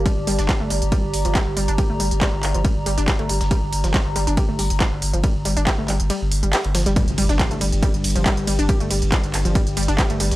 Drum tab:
RD |x---x---x---x---x-----x-x---x---|x---x---x---x---x---x---x-x-x---|x---x---x---x---x-----x-x---x---|x---x---x---x---x---x---x-x-x---|
HH |x---o-x-x---o-x-x---o-x-x---o-x-|x---o-x-x---o-x-x---o-x-x---o-x-|x---o-x-x---o-x-x---o-x-x---o-x-|x---o-x-x---o-x-x---o-x-x---o-x-|
CP |--------x---------------x-------|--------x---x-----------x-------|--------x---------------x-------|--------x---x-----------x-------|
SD |------o-o---------------o-------|--------o---------------o-----o-|------o-o---------------o-------|--------o---------------o---o-o-|
BD |o-------o-------o-------o-------|o-------o-------o-------o-------|o-------o-------o-------o-------|o-------o-----------------------|

RD |x---x---x---x---x---x-x-x---x---|x---x---x---x---x---x---x-x-x---|
HH |x-x-o-x-x-x-o-x-x-x-oxx-x-x-o-x-|x-x-o-x-x-x-o-x-x-x-oxx-x-x-o-x-|
CP |--------x---------------x-------|--------x---x-----------x-------|
SD |------o-o---------------o-------|--------o---------------o-----o-|
BD |o-------o-------o-------o-------|o-------o-------o-------o-------|